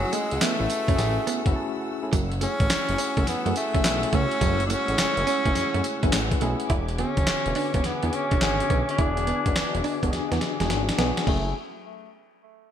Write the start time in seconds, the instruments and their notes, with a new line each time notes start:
Already playing: tenor saxophone F#3, tine electric piano A3 C#4 E4 G#4, string section A3 F#4 F#5 E6
0.03 muted clean electric guitar stroke
0.13 tenor saxophone G#3, clean electric guitar A3, closed hi-hat, tambourine
0.31 analog synth bass C#2, closed hi-hat
0.41 tine electric piano A3 C#4 E4 B4, tenor saxophone A3, clean electric guitar B3, snare, clap, closed hi-hat, tambourine
0.60 analog synth bass A1
0.70 muted clean electric guitar stroke, closed hi-hat, tambourine
0.88 analog synth bass F#1, tine electric piano A3 C#4 E4 F#4, clean electric guitar C#4, kick, closed hi-hat
0.96 analog synth bass A1, tine electric piano G#4, snare, closed hi-hat, tambourine
1.27 clean electric guitar B3, closed hi-hat, tambourine
1.45 analog synth bass F#1, tine electric piano A3 C#4 E4 F#4, kick, closed hi-hat
1.56 tine electric piano A5
2.02 tine electric piano A3 C#4 E4 A4
2.12 analog synth bass F#1, clean electric guitar F#3, string section F#4 C#5 F#5 E6, kick, closed hi-hat, tambourine
2.32 muted clean electric guitar stroke, closed hi-hat
2.41 clean electric guitar A3, tine electric piano A3 C#4 E4 G#4, tenor saxophone C#4, closed hi-hat, tambourine
2.60 analog synth bass A1, kick, closed hi-hat
2.70 analog synth bass F#1, muted clean electric guitar stroke, snare, clap, closed hi-hat, tambourine
2.88 analog synth bass F#1, tine electric piano A3 C#4 E4 G#4, closed hi-hat
2.98 clean electric guitar C#4, open hi-hat, tambourine
3.17 analog synth bass F#1, clean electric guitar A3, kick, closed hi-hat
3.27 analog synth bass F#2, tenor saxophone B3, snare, closed hi-hat, tambourine
3.45 analog synth bass F#2, tine electric piano A3 C#4 E4 G#4, clean electric guitar A3, closed hi-hat
3.56 tenor saxophone A3, muted clean electric guitar stroke, closed hi-hat, tambourine
3.75 analog synth bass F#1, clean electric guitar C#4, kick, closed hi-hat
3.84 analog synth bass B1, tine electric piano A3 C#4 E4 G#4, snare, clap, closed hi-hat, tambourine
4.03 closed hi-hat
4.13 analog synth bass C#2, clean electric guitar A3, tenor saxophone C#4, kick, closed hi-hat
4.31 closed hi-hat
4.41 analog synth bass F#1, clean electric guitar F#3, tine electric piano G#3 C#4 E4 F#4, kick, closed hi-hat, tambourine
4.47 tine electric piano A3
4.60 muted clean electric guitar stroke, closed hi-hat
4.66 clean electric guitar A3, tenor saxophone D4, closed hi-hat, tambourine
4.71 tenor saxophone C#4
4.88 analog synth bass A1, tine electric piano G#3 C#4 E4 G#4, closed hi-hat
4.95 analog synth bass F#1, tine electric piano A3, muted clean electric guitar stroke, snare, clap, closed hi-hat, tambourine
5.17 analog synth bass F#1, closed hi-hat
5.27 clean electric guitar C#4, open hi-hat, tambourine
5.45 analog synth bass F#1, tine electric piano A3 C#4 E4 G#4, clean electric guitar A3, kick, closed hi-hat
5.55 analog synth bass F#2, snare, closed hi-hat, tambourine
5.74 analog synth bass F#2, clean electric guitar A3, closed hi-hat
5.84 muted clean electric guitar stroke, closed hi-hat, tambourine
6.02 analog synth bass F#1, tine electric piano A3 C#4 E4 B4, clean electric guitar C#4, kick, closed hi-hat
6.12 analog synth bass A1, snare, clap, closed hi-hat, tambourine
6.31 kick, closed hi-hat
6.41 analog synth bass B1, tine electric piano A3 C#4 E4 G#4, clean electric guitar A3, closed hi-hat
6.60 closed hi-hat
6.70 analog synth bass E1, clean electric guitar E4, string section F#4 E5 G#5 D6, kick, closed hi-hat
6.88 muted clean electric guitar stroke, closed hi-hat
6.98 tine electric piano D3 B3 F#4 G#4, clean electric guitar B3, tenor saxophone C#4, closed hi-hat
7.17 analog synth bass F#1, kick, closed hi-hat
7.27 analog synth bass E1, muted clean electric guitar stroke, snare, clap, closed hi-hat
7.46 analog synth bass E1, tine electric piano D3 B3 F#4 B4, closed hi-hat
7.55 clean electric guitar D4, open hi-hat
7.74 analog synth bass E1, clean electric guitar B3, kick, closed hi-hat
7.84 analog synth bass E2, tenor saxophone B3, snare, closed hi-hat
8.03 analog synth bass E2, tine electric piano B3 D4 F#4 G#4, clean electric guitar B3, closed hi-hat
8.13 tenor saxophone C#4, muted clean electric guitar stroke, closed hi-hat
8.31 analog synth bass E1, clean electric guitar D4, kick, closed hi-hat
8.41 analog synth bass G#1, tine electric piano D3 B3 F#4 G#4, snare, clap, closed hi-hat
8.60 closed hi-hat
8.70 analog synth bass B1, clean electric guitar B3, kick, closed hi-hat
8.89 tenor saxophone D4, closed hi-hat
8.98 analog synth bass E1, tine electric piano B3 D4 F#4 G#4, clean electric guitar E4, kick, closed hi-hat
9.17 muted clean electric guitar stroke, closed hi-hat
9.27 clean electric guitar B3, closed hi-hat
9.46 analog synth bass F#1, tine electric piano B3 D4 F#4 B4, kick, closed hi-hat
9.56 analog synth bass E1, muted clean electric guitar stroke, snare, clap, closed hi-hat
9.75 analog synth bass E1, closed hi-hat
9.84 clean electric guitar D4, open hi-hat
10.03 analog synth bass E1, tine electric piano B3 D4 F#4 G4, clean electric guitar B3, kick, closed hi-hat
10.11 analog synth bass E2, tine electric piano G#4, snare, closed hi-hat
10.32 analog synth bass E2, clean electric guitar B3, snare, closed hi-hat
10.41 muted clean electric guitar stroke, snare, closed hi-hat
10.60 analog synth bass E1, clean electric guitar G#3, tine electric piano B3 D4 F#4 G#4, snare, closed hi-hat
10.70 analog synth bass G#1, snare, closed hi-hat
10.89 snare, closed hi-hat
10.98 analog synth bass B1, clean electric guitar B3, tine electric piano B3 D4 F#4 G#4, snare, closed hi-hat
11.17 snare, closed hi-hat
11.27 analog synth bass F#1, string section F#3 F#4 G#4 A4 E5, clean electric guitar A3, tine electric piano A3 C#4 E4 G#4, tenor saxophone A3, kick, crash